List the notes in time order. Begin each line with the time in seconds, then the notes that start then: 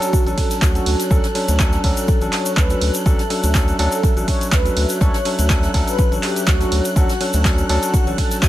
Already playing: F#3 C#4 D4 F#4 A4 C#5 A5 F#6
0.02 F#4, closed hi-hat, shaker
0.13 kick, closed hi-hat, shaker
0.26 A1 F#3 C#4 D4 A4, closed hi-hat, shaker
0.38 A4, kick, closed hi-hat, open hi-hat, ride
0.51 snare, closed hi-hat, shaker
0.62 D2 F#4, kick, snare, clap, closed hi-hat, shaker
0.75 F#3 C#4 D4 A4, closed hi-hat, shaker
0.86 D2, closed hi-hat, open hi-hat, ride
0.99 snare, closed hi-hat, shaker
1.10 D2 F#3 C#4 D4 A4, kick, closed hi-hat, shaker
1.24 snare, closed hi-hat, shaker
1.35 F#3 C#4 D4 A4, closed hi-hat, open hi-hat, ride
1.48 D2, closed hi-hat, shaker
1.59 F#3 C#4 D4 A4, kick, snare, clap, closed hi-hat, shaker
1.73 snare, closed hi-hat, shaker
1.84 D2 F#3 C#4 D4 A4, kick, open hi-hat, ride
1.97 A4, closed hi-hat, shaker
2.08 kick, closed hi-hat, shaker
2.21 A1 F#3 C#4 D4 A4, closed hi-hat, shaker
2.33 C#5, snare, clap, closed hi-hat, open hi-hat, ride
2.46 closed hi-hat, shaker
2.57 D2 B4, kick, clap, shaker
2.70 F#3 C#4 D4 A4, closed hi-hat, shaker
2.81 D2, closed hi-hat, open hi-hat, ride
2.94 closed hi-hat, shaker
3.06 D2 F#3 C#4 D4 A4 E5, kick, closed hi-hat, shaker
3.19 snare, closed hi-hat, shaker
3.30 F#3 C#4 D4 A4, closed hi-hat, open hi-hat, ride
3.43 D2, closed hi-hat, shaker
3.54 F#3 C#4 D4 A4, kick, snare, clap, closed hi-hat, shaker
3.68 closed hi-hat, shaker
3.79 D2 F#3 C#4 D4 A4, closed hi-hat, open hi-hat, ride
3.92 A4, closed hi-hat, shaker
4.03 kick, closed hi-hat, shaker
4.16 A1 F#3 C#4 D4 A4, closed hi-hat, shaker
4.28 C#5, kick, closed hi-hat, open hi-hat, ride
4.41 snare, closed hi-hat, shaker
4.52 D2 B4, kick, snare, clap, closed hi-hat, shaker
4.65 F#3 C#4 D4 A4, closed hi-hat, shaker
4.77 D2, closed hi-hat, open hi-hat, ride
4.89 snare, closed hi-hat, shaker
5.01 D2 F#3 C#4 D4 A4 C#5, kick, closed hi-hat, shaker
5.14 snare, closed hi-hat, shaker
5.25 F#3 C#4 D4 A4, closed hi-hat, open hi-hat, ride
5.39 D2, closed hi-hat, shaker
5.49 F#3 C#4 D4 A4, kick, snare, clap, closed hi-hat, shaker
5.63 snare, closed hi-hat, shaker
5.74 D2 F#3 C#4 D4 A4, kick, open hi-hat, ride
5.88 B4, closed hi-hat, shaker
5.99 kick, closed hi-hat, shaker
6.11 A1 F#3 C#4 D4 A4, closed hi-hat, shaker
6.23 G4, clap, closed hi-hat, open hi-hat, ride
6.36 closed hi-hat, shaker
6.47 D2 F#4, kick, snare, clap, closed hi-hat, shaker
6.60 F#3 C#4 D4 A4, snare, closed hi-hat, shaker
6.72 D2, closed hi-hat, open hi-hat, ride
6.85 closed hi-hat, shaker
6.96 D2 F#3 C#4 D4 F#4 A4 A5, kick, closed hi-hat, shaker
7.09 snare, closed hi-hat, shaker
7.20 F#3 C#4 D4 A4, closed hi-hat, open hi-hat, ride
7.33 D2, closed hi-hat, shaker
7.45 F#3 C#4 D4 A4, kick, snare, clap, closed hi-hat, shaker
7.58 closed hi-hat, shaker
7.69 D2 F#3 C#4 D4 A4, closed hi-hat, open hi-hat, ride
7.83 F#4, closed hi-hat, shaker
7.93 kick, closed hi-hat, shaker
8.07 A1 F#3 C#4 D4 A4, closed hi-hat, shaker
8.18 A4, kick, closed hi-hat, open hi-hat, ride
8.31 snare, closed hi-hat, shaker
8.42 D2 F#4, kick, snare, clap, closed hi-hat, shaker